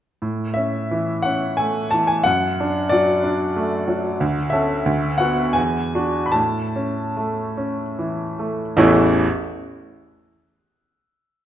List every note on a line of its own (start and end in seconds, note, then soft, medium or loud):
0.22 2.22 A2 soft
0.54 1.11 C#4 soft
0.54 1.24 E5 medium
0.91 1.46 E3 soft
1.22 1.80 C#4 soft
1.22 1.58 F#5 medium
1.57 2.13 A3 soft
1.57 1.92 G#5 medium
1.91 2.26 E3 soft
1.91 2.08 A5 medium
2.07 2.25 G#5 medium
2.24 4.16 F#2 medium
2.24 2.90 F#5 medium
2.60 3.12 D4 soft
2.89 3.43 F#3 soft
2.89 4.19 D5 medium
3.24 3.75 D4 medium
3.56 4.07 A3 medium
3.88 4.20 F#3 soft
4.20 4.84 D2 medium
4.50 4.82 C#4 soft
4.50 4.83 A4 medium
4.50 5.18 E5 medium
4.86 5.54 D2 medium
5.18 5.52 B3 soft
5.18 5.52 F#4 soft
5.18 5.55 F#5 medium
5.53 6.32 E2 medium
5.53 6.25 G#5 medium
5.95 6.31 D4 soft
5.95 6.31 F#4 soft
6.26 6.35 B5 medium
6.32 8.72 A2 medium
6.32 7.97 A5 medium
6.76 7.41 C#4 soft
7.17 7.82 A3 soft
7.57 8.22 C#4 soft
7.99 8.62 E3 soft
8.39 8.76 A3 soft
8.77 9.15 A1 medium
8.77 9.15 E2 medium
8.77 9.15 E3 medium
8.77 9.15 A3 medium
8.77 9.15 C#4 medium
8.77 9.15 E4 medium